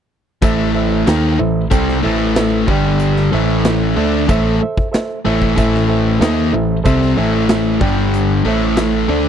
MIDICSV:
0, 0, Header, 1, 5, 480
1, 0, Start_track
1, 0, Key_signature, 0, "minor"
1, 0, Tempo, 641026
1, 322, Time_signature, 4, 2, 24, 8
1, 6953, End_track
2, 0, Start_track
2, 0, Title_t, "Reed electric piano"
2, 0, Program_c, 0, 4
2, 317, Note_on_c, 0, 69, 102
2, 323, Note_on_c, 0, 72, 88
2, 333, Note_on_c, 0, 76, 113
2, 513, Note_off_c, 0, 69, 0
2, 515, Note_off_c, 0, 72, 0
2, 521, Note_off_c, 0, 76, 0
2, 556, Note_on_c, 0, 69, 75
2, 562, Note_on_c, 0, 72, 75
2, 565, Note_on_c, 0, 76, 91
2, 753, Note_off_c, 0, 69, 0
2, 756, Note_off_c, 0, 72, 0
2, 758, Note_off_c, 0, 76, 0
2, 798, Note_on_c, 0, 69, 81
2, 800, Note_on_c, 0, 72, 65
2, 813, Note_on_c, 0, 79, 89
2, 994, Note_off_c, 0, 69, 0
2, 996, Note_off_c, 0, 72, 0
2, 1002, Note_off_c, 0, 79, 0
2, 1037, Note_on_c, 0, 69, 77
2, 1041, Note_on_c, 0, 72, 76
2, 1044, Note_on_c, 0, 76, 88
2, 1234, Note_off_c, 0, 69, 0
2, 1237, Note_off_c, 0, 72, 0
2, 1238, Note_off_c, 0, 76, 0
2, 1280, Note_on_c, 0, 69, 100
2, 1281, Note_on_c, 0, 72, 99
2, 1292, Note_on_c, 0, 79, 120
2, 1476, Note_off_c, 0, 69, 0
2, 1477, Note_off_c, 0, 72, 0
2, 1482, Note_off_c, 0, 79, 0
2, 1523, Note_on_c, 0, 69, 80
2, 1529, Note_on_c, 0, 72, 72
2, 1530, Note_on_c, 0, 76, 84
2, 1719, Note_off_c, 0, 69, 0
2, 1722, Note_off_c, 0, 72, 0
2, 1722, Note_off_c, 0, 76, 0
2, 1760, Note_on_c, 0, 69, 73
2, 1766, Note_on_c, 0, 72, 65
2, 1773, Note_on_c, 0, 76, 81
2, 1958, Note_off_c, 0, 69, 0
2, 1961, Note_off_c, 0, 72, 0
2, 1964, Note_off_c, 0, 76, 0
2, 2020, Note_on_c, 0, 67, 81
2, 2026, Note_on_c, 0, 74, 79
2, 2028, Note_on_c, 0, 79, 93
2, 2401, Note_off_c, 0, 67, 0
2, 2403, Note_off_c, 0, 74, 0
2, 2405, Note_off_c, 0, 79, 0
2, 2487, Note_on_c, 0, 69, 78
2, 2488, Note_on_c, 0, 72, 81
2, 2502, Note_on_c, 0, 76, 88
2, 2875, Note_off_c, 0, 69, 0
2, 2875, Note_off_c, 0, 72, 0
2, 2882, Note_off_c, 0, 76, 0
2, 2963, Note_on_c, 0, 69, 85
2, 2975, Note_on_c, 0, 76, 87
2, 2976, Note_on_c, 0, 72, 70
2, 3161, Note_off_c, 0, 69, 0
2, 3167, Note_off_c, 0, 72, 0
2, 3167, Note_off_c, 0, 76, 0
2, 3211, Note_on_c, 0, 69, 106
2, 3220, Note_on_c, 0, 72, 88
2, 3225, Note_on_c, 0, 76, 121
2, 3405, Note_off_c, 0, 69, 0
2, 3409, Note_off_c, 0, 72, 0
2, 3412, Note_off_c, 0, 76, 0
2, 3454, Note_on_c, 0, 69, 73
2, 3462, Note_on_c, 0, 72, 65
2, 3465, Note_on_c, 0, 76, 93
2, 3646, Note_off_c, 0, 69, 0
2, 3650, Note_off_c, 0, 72, 0
2, 3652, Note_off_c, 0, 76, 0
2, 3682, Note_on_c, 0, 69, 68
2, 3687, Note_on_c, 0, 72, 68
2, 3690, Note_on_c, 0, 76, 83
2, 3880, Note_off_c, 0, 69, 0
2, 3883, Note_off_c, 0, 72, 0
2, 3885, Note_off_c, 0, 76, 0
2, 3927, Note_on_c, 0, 69, 71
2, 3933, Note_on_c, 0, 72, 74
2, 3939, Note_on_c, 0, 76, 88
2, 4123, Note_off_c, 0, 69, 0
2, 4126, Note_off_c, 0, 72, 0
2, 4129, Note_off_c, 0, 76, 0
2, 4167, Note_on_c, 0, 69, 103
2, 4179, Note_on_c, 0, 72, 82
2, 4181, Note_on_c, 0, 76, 109
2, 4363, Note_off_c, 0, 69, 0
2, 4369, Note_off_c, 0, 72, 0
2, 4370, Note_off_c, 0, 76, 0
2, 4404, Note_on_c, 0, 69, 72
2, 4413, Note_on_c, 0, 72, 70
2, 4415, Note_on_c, 0, 76, 81
2, 4601, Note_off_c, 0, 69, 0
2, 4606, Note_off_c, 0, 72, 0
2, 4607, Note_off_c, 0, 76, 0
2, 4637, Note_on_c, 0, 69, 79
2, 4642, Note_on_c, 0, 72, 72
2, 4648, Note_on_c, 0, 76, 90
2, 4837, Note_off_c, 0, 69, 0
2, 4840, Note_off_c, 0, 72, 0
2, 4843, Note_off_c, 0, 76, 0
2, 4884, Note_on_c, 0, 69, 76
2, 4890, Note_on_c, 0, 72, 72
2, 4893, Note_on_c, 0, 76, 84
2, 5080, Note_off_c, 0, 69, 0
2, 5083, Note_off_c, 0, 72, 0
2, 5085, Note_off_c, 0, 76, 0
2, 5120, Note_on_c, 0, 69, 97
2, 5125, Note_on_c, 0, 72, 106
2, 5134, Note_on_c, 0, 76, 122
2, 5318, Note_off_c, 0, 69, 0
2, 5320, Note_off_c, 0, 72, 0
2, 5325, Note_off_c, 0, 76, 0
2, 5366, Note_on_c, 0, 69, 81
2, 5372, Note_on_c, 0, 72, 67
2, 5377, Note_on_c, 0, 76, 87
2, 5560, Note_off_c, 0, 69, 0
2, 5563, Note_off_c, 0, 72, 0
2, 5566, Note_off_c, 0, 76, 0
2, 5605, Note_on_c, 0, 72, 69
2, 5606, Note_on_c, 0, 69, 73
2, 5617, Note_on_c, 0, 76, 80
2, 5799, Note_off_c, 0, 72, 0
2, 5800, Note_off_c, 0, 69, 0
2, 5805, Note_off_c, 0, 76, 0
2, 5837, Note_on_c, 0, 67, 81
2, 5847, Note_on_c, 0, 74, 77
2, 5853, Note_on_c, 0, 79, 97
2, 6225, Note_off_c, 0, 67, 0
2, 6230, Note_off_c, 0, 74, 0
2, 6233, Note_off_c, 0, 79, 0
2, 6334, Note_on_c, 0, 69, 84
2, 6343, Note_on_c, 0, 72, 71
2, 6347, Note_on_c, 0, 76, 94
2, 6712, Note_off_c, 0, 69, 0
2, 6717, Note_off_c, 0, 72, 0
2, 6718, Note_off_c, 0, 76, 0
2, 6799, Note_on_c, 0, 69, 73
2, 6809, Note_on_c, 0, 72, 69
2, 6811, Note_on_c, 0, 74, 79
2, 6953, Note_off_c, 0, 69, 0
2, 6953, Note_off_c, 0, 72, 0
2, 6953, Note_off_c, 0, 74, 0
2, 6953, End_track
3, 0, Start_track
3, 0, Title_t, "Overdriven electric guitar"
3, 0, Program_c, 1, 29
3, 315, Note_on_c, 1, 45, 94
3, 317, Note_on_c, 1, 52, 90
3, 320, Note_on_c, 1, 57, 88
3, 794, Note_off_c, 1, 45, 0
3, 795, Note_off_c, 1, 52, 0
3, 797, Note_off_c, 1, 57, 0
3, 799, Note_on_c, 1, 51, 84
3, 802, Note_on_c, 1, 58, 77
3, 812, Note_on_c, 1, 63, 96
3, 1036, Note_off_c, 1, 51, 0
3, 1038, Note_off_c, 1, 58, 0
3, 1040, Note_on_c, 1, 45, 61
3, 1042, Note_off_c, 1, 63, 0
3, 1045, Note_on_c, 1, 52, 59
3, 1236, Note_off_c, 1, 45, 0
3, 1239, Note_off_c, 1, 52, 0
3, 1275, Note_on_c, 1, 48, 93
3, 1278, Note_on_c, 1, 55, 112
3, 1283, Note_on_c, 1, 60, 110
3, 1512, Note_off_c, 1, 48, 0
3, 1514, Note_off_c, 1, 55, 0
3, 1515, Note_on_c, 1, 45, 91
3, 1516, Note_off_c, 1, 60, 0
3, 1517, Note_on_c, 1, 52, 90
3, 1519, Note_on_c, 1, 57, 91
3, 1997, Note_off_c, 1, 45, 0
3, 1998, Note_off_c, 1, 52, 0
3, 1999, Note_off_c, 1, 57, 0
3, 2002, Note_on_c, 1, 43, 92
3, 2002, Note_on_c, 1, 50, 86
3, 2007, Note_on_c, 1, 55, 96
3, 2481, Note_off_c, 1, 43, 0
3, 2481, Note_off_c, 1, 50, 0
3, 2483, Note_off_c, 1, 55, 0
3, 2487, Note_on_c, 1, 45, 77
3, 2491, Note_on_c, 1, 52, 97
3, 2492, Note_on_c, 1, 57, 96
3, 2960, Note_off_c, 1, 45, 0
3, 2961, Note_off_c, 1, 57, 0
3, 2963, Note_on_c, 1, 50, 89
3, 2966, Note_off_c, 1, 52, 0
3, 2970, Note_on_c, 1, 57, 86
3, 2972, Note_on_c, 1, 62, 101
3, 3201, Note_off_c, 1, 50, 0
3, 3204, Note_on_c, 1, 45, 93
3, 3205, Note_off_c, 1, 57, 0
3, 3206, Note_off_c, 1, 62, 0
3, 3209, Note_on_c, 1, 52, 101
3, 3214, Note_on_c, 1, 57, 115
3, 3442, Note_off_c, 1, 45, 0
3, 3445, Note_off_c, 1, 52, 0
3, 3447, Note_off_c, 1, 57, 0
3, 3931, Note_on_c, 1, 45, 83
3, 3931, Note_on_c, 1, 52, 93
3, 3936, Note_on_c, 1, 57, 87
3, 4152, Note_off_c, 1, 45, 0
3, 4159, Note_off_c, 1, 52, 0
3, 4161, Note_on_c, 1, 45, 99
3, 4163, Note_off_c, 1, 57, 0
3, 4168, Note_on_c, 1, 52, 97
3, 4172, Note_on_c, 1, 57, 91
3, 4640, Note_off_c, 1, 45, 0
3, 4644, Note_off_c, 1, 52, 0
3, 4646, Note_off_c, 1, 57, 0
3, 4648, Note_on_c, 1, 51, 74
3, 4655, Note_on_c, 1, 58, 91
3, 4655, Note_on_c, 1, 63, 98
3, 4884, Note_off_c, 1, 51, 0
3, 4887, Note_off_c, 1, 58, 0
3, 4887, Note_off_c, 1, 63, 0
3, 4897, Note_on_c, 1, 45, 56
3, 4898, Note_on_c, 1, 52, 73
3, 5087, Note_off_c, 1, 45, 0
3, 5088, Note_off_c, 1, 52, 0
3, 5137, Note_on_c, 1, 48, 90
3, 5138, Note_on_c, 1, 55, 94
3, 5143, Note_on_c, 1, 60, 102
3, 5366, Note_off_c, 1, 48, 0
3, 5367, Note_off_c, 1, 55, 0
3, 5369, Note_on_c, 1, 45, 90
3, 5370, Note_off_c, 1, 60, 0
3, 5372, Note_on_c, 1, 52, 90
3, 5376, Note_on_c, 1, 57, 96
3, 5841, Note_off_c, 1, 45, 0
3, 5843, Note_off_c, 1, 52, 0
3, 5845, Note_off_c, 1, 57, 0
3, 5848, Note_on_c, 1, 43, 91
3, 5850, Note_on_c, 1, 50, 89
3, 5855, Note_on_c, 1, 55, 94
3, 6319, Note_off_c, 1, 43, 0
3, 6320, Note_off_c, 1, 50, 0
3, 6321, Note_off_c, 1, 55, 0
3, 6324, Note_on_c, 1, 45, 90
3, 6324, Note_on_c, 1, 52, 91
3, 6330, Note_on_c, 1, 57, 103
3, 6794, Note_off_c, 1, 57, 0
3, 6795, Note_off_c, 1, 45, 0
3, 6795, Note_off_c, 1, 52, 0
3, 6799, Note_on_c, 1, 50, 91
3, 6803, Note_on_c, 1, 57, 87
3, 6809, Note_on_c, 1, 62, 104
3, 6953, Note_off_c, 1, 50, 0
3, 6953, Note_off_c, 1, 57, 0
3, 6953, Note_off_c, 1, 62, 0
3, 6953, End_track
4, 0, Start_track
4, 0, Title_t, "Picked electric bass"
4, 0, Program_c, 2, 34
4, 312, Note_on_c, 2, 33, 87
4, 770, Note_off_c, 2, 33, 0
4, 804, Note_on_c, 2, 39, 85
4, 1029, Note_off_c, 2, 39, 0
4, 1048, Note_on_c, 2, 33, 74
4, 1272, Note_off_c, 2, 33, 0
4, 1284, Note_on_c, 2, 36, 82
4, 1510, Note_off_c, 2, 36, 0
4, 1534, Note_on_c, 2, 33, 100
4, 1983, Note_off_c, 2, 33, 0
4, 2009, Note_on_c, 2, 31, 91
4, 2462, Note_off_c, 2, 31, 0
4, 2495, Note_on_c, 2, 33, 80
4, 2945, Note_off_c, 2, 33, 0
4, 2972, Note_on_c, 2, 38, 89
4, 3196, Note_off_c, 2, 38, 0
4, 3215, Note_on_c, 2, 33, 86
4, 3438, Note_off_c, 2, 33, 0
4, 3937, Note_on_c, 2, 33, 88
4, 4159, Note_off_c, 2, 33, 0
4, 4177, Note_on_c, 2, 33, 95
4, 4625, Note_off_c, 2, 33, 0
4, 4648, Note_on_c, 2, 39, 88
4, 4874, Note_off_c, 2, 39, 0
4, 4892, Note_on_c, 2, 33, 67
4, 5115, Note_off_c, 2, 33, 0
4, 5136, Note_on_c, 2, 36, 86
4, 5357, Note_off_c, 2, 36, 0
4, 5372, Note_on_c, 2, 33, 100
4, 5820, Note_off_c, 2, 33, 0
4, 5848, Note_on_c, 2, 31, 87
4, 6297, Note_off_c, 2, 31, 0
4, 6327, Note_on_c, 2, 33, 87
4, 6774, Note_off_c, 2, 33, 0
4, 6803, Note_on_c, 2, 38, 91
4, 6953, Note_off_c, 2, 38, 0
4, 6953, End_track
5, 0, Start_track
5, 0, Title_t, "Drums"
5, 317, Note_on_c, 9, 36, 93
5, 318, Note_on_c, 9, 42, 59
5, 392, Note_off_c, 9, 36, 0
5, 393, Note_off_c, 9, 42, 0
5, 803, Note_on_c, 9, 42, 72
5, 806, Note_on_c, 9, 38, 104
5, 878, Note_off_c, 9, 42, 0
5, 881, Note_off_c, 9, 38, 0
5, 1283, Note_on_c, 9, 36, 102
5, 1284, Note_on_c, 9, 42, 69
5, 1358, Note_off_c, 9, 36, 0
5, 1359, Note_off_c, 9, 42, 0
5, 1411, Note_on_c, 9, 38, 33
5, 1486, Note_off_c, 9, 38, 0
5, 1767, Note_on_c, 9, 42, 67
5, 1770, Note_on_c, 9, 38, 111
5, 1842, Note_off_c, 9, 42, 0
5, 1845, Note_off_c, 9, 38, 0
5, 2007, Note_on_c, 9, 36, 94
5, 2081, Note_off_c, 9, 36, 0
5, 2243, Note_on_c, 9, 42, 66
5, 2318, Note_off_c, 9, 42, 0
5, 2370, Note_on_c, 9, 38, 29
5, 2445, Note_off_c, 9, 38, 0
5, 2731, Note_on_c, 9, 42, 64
5, 2734, Note_on_c, 9, 38, 109
5, 2805, Note_off_c, 9, 42, 0
5, 2808, Note_off_c, 9, 38, 0
5, 3212, Note_on_c, 9, 36, 107
5, 3212, Note_on_c, 9, 42, 66
5, 3287, Note_off_c, 9, 36, 0
5, 3287, Note_off_c, 9, 42, 0
5, 3575, Note_on_c, 9, 36, 78
5, 3650, Note_off_c, 9, 36, 0
5, 3699, Note_on_c, 9, 42, 66
5, 3702, Note_on_c, 9, 38, 104
5, 3774, Note_off_c, 9, 42, 0
5, 3777, Note_off_c, 9, 38, 0
5, 4056, Note_on_c, 9, 36, 70
5, 4131, Note_off_c, 9, 36, 0
5, 4176, Note_on_c, 9, 36, 91
5, 4177, Note_on_c, 9, 42, 58
5, 4251, Note_off_c, 9, 36, 0
5, 4251, Note_off_c, 9, 42, 0
5, 4303, Note_on_c, 9, 38, 31
5, 4377, Note_off_c, 9, 38, 0
5, 4657, Note_on_c, 9, 42, 66
5, 4660, Note_on_c, 9, 38, 111
5, 4732, Note_off_c, 9, 42, 0
5, 4735, Note_off_c, 9, 38, 0
5, 5132, Note_on_c, 9, 42, 66
5, 5134, Note_on_c, 9, 36, 107
5, 5207, Note_off_c, 9, 42, 0
5, 5209, Note_off_c, 9, 36, 0
5, 5257, Note_on_c, 9, 38, 30
5, 5331, Note_off_c, 9, 38, 0
5, 5609, Note_on_c, 9, 42, 73
5, 5612, Note_on_c, 9, 38, 109
5, 5683, Note_off_c, 9, 42, 0
5, 5686, Note_off_c, 9, 38, 0
5, 5848, Note_on_c, 9, 36, 98
5, 5923, Note_off_c, 9, 36, 0
5, 6095, Note_on_c, 9, 42, 60
5, 6170, Note_off_c, 9, 42, 0
5, 6565, Note_on_c, 9, 42, 69
5, 6568, Note_on_c, 9, 38, 100
5, 6640, Note_off_c, 9, 42, 0
5, 6643, Note_off_c, 9, 38, 0
5, 6953, End_track
0, 0, End_of_file